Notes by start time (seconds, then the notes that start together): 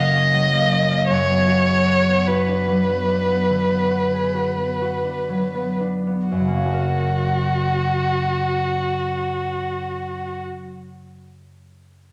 Already playing: F#2 C#3 F#3 A#3 C#4 F#4 D#5
0.16 C#4
0.34 F#3
0.53 A#3
0.73 C#4
0.91 A#3
1.08 F#2 C#5
1.29 B3
1.48 F#4
1.68 G#4
1.87 F#4
2.08 B3
2.27 F#4 B4
2.48 D4
2.67 F#3
2.89 B3
3.08 D4
3.28 B3
3.50 D3
3.71 B3
3.91 F#4
4.13 G#4
4.34 F#4
4.57 B3
4.82 F#4
5.05 D4
5.29 F#3
5.55 B3
5.80 D4
6.07 B3
6.28 F#2 F#4
6.40 C#3
6.48 A#3
6.56 C#4
6.65 F#4
6.74 A#4